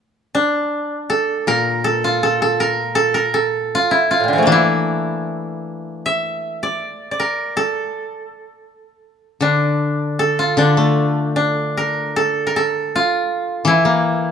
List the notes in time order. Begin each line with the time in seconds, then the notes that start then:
0.35 D4
1.10 A4
1.47 A#2 A#4
1.84 A4
2.04 F4
2.23 A4
2.42 A4
2.60 A#4
2.95 A4
3.14 A#4
3.34 A4
3.75 F4
3.91 E4
4.11 F4
4.20 A2 A#2
4.28 D3
4.33 E3 F3
4.38 A3
4.43 A#3 D4
4.47 E3
4.52 E4
6.06 E5
6.63 D5
7.11 D5
7.20 A#4
7.57 A4
9.41 D3 D4
10.19 A4
10.39 F4
10.57 D3 D4
10.77 A3
11.36 D4
11.77 A#4
12.16 A4
12.47 A#4
12.56 A4
12.96 F4
13.65 E3 E4
13.85 A#3